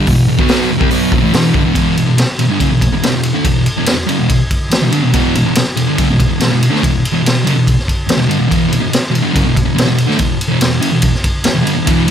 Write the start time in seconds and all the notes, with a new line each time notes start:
0.07 E2 B2, kick, open hi-hat
0.29 E2 B2
0.39 B2 F#3 B3, kick
0.48 snare, open hi-hat
0.70 E2 B2
0.79 C3 G3, kick
0.90 B2 F#3 B3, open hi-hat
1.11 E2 B2, kick
1.22 A2 E3
1.33 E2 B2 E3, snare, open hi-hat
1.54 G2 D3, kick
1.65 E2 B2
1.74 E2 B2 E3, kick, ride
1.96 E2 B2, ride
2.07 E2 B2
2.18 muted distorted electric guitar stroke, snare, ride
2.39 E2 B2, ride
2.49 G2 D3
2.60 F#2 C#3, kick, ride
2.70 E2 B2
2.81 muted distorted electric guitar stroke, kick, ride
2.92 E2 B2
3.03 E2 B2, snare, ride
3.14 E2 B2
3.23 ride
3.34 D3 A3
3.45 E2 B2, kick, ride
3.66 ride
3.77 E2 B2
3.86 E2 B2, snare, ride
4.06 F#2 C#3, ride
4.19 E2 B2
4.29 kick, ride
4.51 kick, ride
4.71 muted distorted electric guitar stroke, snare, ride
4.82 E2 B2
4.91 G2 D3, ride
5.04 E2 B2
5.13 E2 B2 E3, kick, ride
5.35 E2 B2, ride
5.45 E2 B2
5.55 muted distorted electric guitar stroke, snare, ride
5.76 E2 B2, ride
5.87 G2 D3
5.98 F#2 C#3, kick, ride
6.10 E2 B2
6.20 muted distorted electric guitar stroke, kick, ride
6.28 E2 B2
6.40 E2 B2, snare, ride
6.51 E2 B2
6.62 ride
6.71 D3 A3
6.75 snare
6.82 E2 B2, kick, ride
7.05 ride
7.13 E2 B2
7.24 E2 B2, snare, ride
7.44 F#2 C#3, ride
7.55 E2 B2
7.67 kick, ride
7.79 snare
7.88 kick, ride
8.08 muted distorted electric guitar stroke, snare, ride
8.17 E2 B2
8.27 G2 D3, ride
8.39 E2 B2
8.48 E2 B2 E3, kick, ride
8.69 E2 B2, ride
8.80 E2 B2
8.90 muted distorted electric guitar stroke, ride
8.94 snare
9.11 E2 B2
9.15 ride
9.23 G2 D3
9.32 F#2 C#3, kick, ride
9.45 E2 B2
9.55 muted distorted electric guitar stroke, kick, ride
9.64 E2 B2
9.75 E2 B2, ride
9.79 snare
9.86 E2 B2
9.98 ride
10.07 D3 A3, snare
10.17 E2 B2, kick, ride
10.41 ride
10.48 E2 B2
10.60 E2 B2, snare, ride
10.80 F#2 C#3, ride
10.92 E2 B2
11.02 kick, ride
11.15 snare
11.24 kick, ride
11.44 muted distorted electric guitar stroke, snare, ride
11.55 E2 B2
11.63 G2 D3, ride
11.75 E2 B2
11.86 E2 B2 E3, kick, ride
12.08 ride